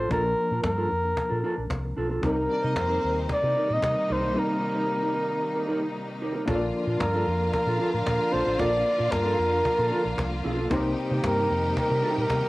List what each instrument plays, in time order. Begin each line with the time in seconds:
Already playing: reed electric piano D4, clean electric guitar A4
0.09 fingered electric bass A#1, reed electric piano F3 A#3 D4 A#4, clean electric guitar D4 F4 A4, flugelhorn A#4, cajon bass
0.25 muted clean electric guitar stroke
0.38 muted clean electric guitar stroke
0.50 fingered electric bass A#2, clean electric guitar D4 F4 A#4, cajon slap
0.64 fingered electric bass G2, flugelhorn A#4, muted clean electric guitar stroke, cajon bass, cajon slap
0.77 clean electric guitar D4 F4 A4
0.91 fingered electric bass F2, muted clean electric guitar stroke
1.03 muted clean electric guitar stroke, cajon slap
1.16 muted clean electric guitar stroke, cajon bass
1.29 fingered electric bass A#2, clean electric guitar D4 F4 A4
1.44 clean electric guitar D4 F4 A4
1.57 fingered electric bass A#1, muted clean electric guitar stroke, cajon slap
1.70 fingered electric bass C2, muted clean electric guitar stroke, cajon bass, cajon slap
1.84 muted clean electric guitar stroke
1.97 fingered electric bass B1, clean electric guitar D4 F4 A4
2.10 clean electric guitar D4 F4 A4, cajon slap
2.22 fingered electric bass C2, string section C3 D#3 G3 A#3 D#4, reed electric piano G3 C4 D#4 A#4, clean electric guitar D#4 G4 A#4, flugelhorn A#4, cajon bass
2.37 muted clean electric guitar stroke
2.49 string section D4 D5, muted clean electric guitar stroke
2.62 fingered electric bass C3, clean electric guitar D#4 G4 C5, string section D#4 D#5, cajon slap
2.75 fingered electric bass F2, string section C4 C5, muted clean electric guitar stroke, cajon bass, cajon slap
2.88 clean electric guitar D#4 G4 A#4
3.02 fingered electric bass D#2, muted clean electric guitar stroke
3.15 muted clean electric guitar stroke, cajon slap
3.29 muted clean electric guitar stroke, cajon bass
3.33 flugelhorn D5
3.43 fingered electric bass C3, clean electric guitar D#4 G4 A#4
3.56 clean electric guitar D#4 G4 A#4
3.69 fingered electric bass A#2, muted clean electric guitar stroke, cajon slap
3.73 flugelhorn D#5
3.82 fingered electric bass C3, muted clean electric guitar stroke, cajon bass, cajon slap
3.96 muted clean electric guitar stroke
4.09 fingered electric bass C2, clean electric guitar D#4 G4 A#4, flugelhorn C5
4.22 fingered electric bass B1, clean electric guitar D#4 G4 A#4
4.34 reed electric piano G3 C4 D#4 A#4, clean electric guitar D#4 G4 A#4
4.39 flugelhorn A#4
4.48 muted clean electric guitar stroke
4.62 muted clean electric guitar stroke
4.75 clean electric guitar D#4 G4 C5
4.89 muted clean electric guitar stroke
5.02 clean electric guitar D#4 G4 A#4
5.15 muted clean electric guitar stroke
5.28 muted clean electric guitar stroke
5.42 muted clean electric guitar stroke
5.55 clean electric guitar D#4 G4 A#4
5.67 clean electric guitar D#4 G4 A#4
5.82 muted clean electric guitar stroke
5.95 muted clean electric guitar stroke
6.08 muted clean electric guitar stroke
6.22 clean electric guitar D#4 G4 A#4
6.34 clean electric guitar D#4 G4 A#4
6.46 fingered electric bass A#1, string section D3 F3 A#3 F4 F5, reed electric piano A#3 D4 F4 A#4 C#5, clean electric guitar D4 F4 A4, cajon bass
6.55 reed electric piano D5
6.61 muted clean electric guitar stroke
6.74 muted clean electric guitar stroke
6.87 fingered electric bass A#2, clean electric guitar D4 F4 A#4
7.00 fingered electric bass G2, flugelhorn A#4, muted clean electric guitar stroke, cajon bass, cajon slap
7.14 clean electric guitar D4 F4 A4
7.27 fingered electric bass F2, muted clean electric guitar stroke
7.41 muted clean electric guitar stroke
7.53 flugelhorn A#4, muted clean electric guitar stroke, cajon bass
7.67 fingered electric bass A#2, clean electric guitar D4 F4 A4
7.79 clean electric guitar D4 F4 A4
7.92 fingered electric bass A2, flugelhorn A#4, muted clean electric guitar stroke
8.06 fingered electric bass A#2, muted clean electric guitar stroke, cajon bass, cajon slap
8.19 muted clean electric guitar stroke
8.31 fingered electric bass A#1, clean electric guitar D4 F4 A4, flugelhorn C5
8.45 fingered electric bass A1, clean electric guitar D4 F4 A4
8.58 fingered electric bass A#1, reed electric piano A#3 D4 F4 A#4 D5, clean electric guitar D4 F4 A4, flugelhorn D5, cajon bass
8.71 muted clean electric guitar stroke
8.85 muted clean electric guitar stroke
8.97 fingered electric bass A#2, clean electric guitar D4 F4 A#4
9.11 fingered electric bass G2, flugelhorn A#4, muted clean electric guitar stroke, cajon bass, cajon slap
9.24 clean electric guitar D4 F4 A4
9.39 fingered electric bass F2
9.51 muted clean electric guitar stroke
9.65 muted clean electric guitar stroke, cajon bass
9.78 fingered electric bass A#2, clean electric guitar D4 F4 A4
9.91 clean electric guitar D4 F4 A4
10.04 fingered electric bass A#1, muted clean electric guitar stroke
10.18 fingered electric bass C2, muted clean electric guitar stroke, cajon bass, cajon slap
10.31 muted clean electric guitar stroke
10.44 fingered electric bass B1, clean electric guitar D4 F4 A4
10.58 clean electric guitar D4 F4 A4
10.70 fingered electric bass C2, string section C3 D#3 G3 D#4 G4 G5, reed electric piano A#3 C4 D#4 G4 C5, clean electric guitar D#4 G4 A#4, cajon bass
10.84 muted clean electric guitar stroke
10.98 muted clean electric guitar stroke
11.11 fingered electric bass C3, clean electric guitar D#4 G4 C5
11.24 fingered electric bass G2, flugelhorn A#4, muted clean electric guitar stroke, cajon bass, cajon slap
11.36 clean electric guitar D#4 G4 A#4
11.50 fingered electric bass F2, muted clean electric guitar stroke
11.63 muted clean electric guitar stroke
11.77 flugelhorn A#4, muted clean electric guitar stroke, muted fingered electric bass stroke, cajon bass
11.89 fingered electric bass C3, clean electric guitar D#4 G4 A#4
12.02 clean electric guitar D#4 G4 A#4
12.17 fingered electric bass A#2, flugelhorn A#4, muted clean electric guitar stroke
12.30 fingered electric bass C3, cajon bass, cajon slap
12.43 muted clean electric guitar stroke